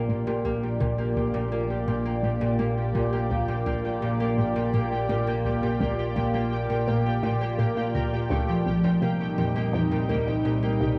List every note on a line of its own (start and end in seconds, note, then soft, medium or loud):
0.00 8.63 A#1 medium
0.00 0.26 A#2 medium
0.00 0.44 A#3 medium
0.00 8.62 A#3 medium
0.00 8.62 F4 medium
0.00 10.99 G4 medium
0.00 8.62 D5 medium
0.00 10.99 G5 medium
0.09 0.31 A#2 medium
0.27 0.79 A#2 medium
0.45 0.77 D2 medium
0.45 0.98 A#3 loud
0.80 1.02 D2 loud
0.80 1.33 A#2 medium
0.98 1.52 A#3 medium
1.16 1.29 D2 medium
1.34 1.86 A#2 medium
1.52 2.05 A#3 medium
1.88 2.40 A#2 medium
1.88 2.09 A#2 medium
2.05 2.59 A#3 medium
2.23 2.45 A#2 medium
2.41 2.94 A#2 medium
2.59 2.81 A#2 medium
2.59 3.12 A#3 medium
2.95 3.27 D2 medium
2.95 3.47 A#2 medium
3.13 3.66 A#3 medium
3.30 3.52 D2 medium
3.48 4.01 A#2 medium
3.66 3.79 D2 medium
3.66 4.19 A#3 medium
4.02 4.54 A#2 medium
4.20 4.73 A#3 medium
4.37 4.59 A#2 medium
4.55 5.08 A#2 medium
4.73 4.95 A#2 medium
4.73 5.26 A#3 loud
5.09 5.31 A#2 medium
5.09 5.61 A#2 medium
5.27 5.80 A#3 medium
5.45 5.77 D2 medium
5.63 6.15 A#2 medium
5.80 6.02 D2 loud
5.80 6.34 A#3 medium
6.16 6.29 D2 medium
6.16 6.68 A#2 medium
6.34 6.87 A#3 medium
6.70 7.22 A#2 medium
6.87 7.09 A#2 medium
6.87 7.41 A#3 medium
7.23 7.45 A#2 medium
7.23 8.71 A#2 medium
7.41 7.59 A#3 medium
7.59 7.81 A#2 medium
7.59 7.76 A#3 medium
7.77 8.36 A#3 medium
7.95 8.27 D2 medium
7.95 8.36 A#4 medium
8.30 8.52 D2 loud
8.30 8.90 A3 medium
8.48 8.71 F3 medium
8.66 8.88 C2 medium
8.66 10.99 C2 medium
8.66 10.99 C3 medium
8.66 10.99 G3 medium
8.66 10.99 D#4 medium
8.84 9.36 A#2 loud
9.02 9.24 C3 medium
9.02 9.55 A#3 medium
9.38 9.70 F2 medium
9.38 9.90 A#2 medium
9.56 10.09 A#3 medium
9.73 9.95 F2 loud
9.91 10.43 A#2 medium
10.09 10.22 D#2 medium
10.09 10.62 A#3 medium
10.45 10.97 A#2 medium
10.63 10.99 A#3 medium
10.80 10.93 C2 medium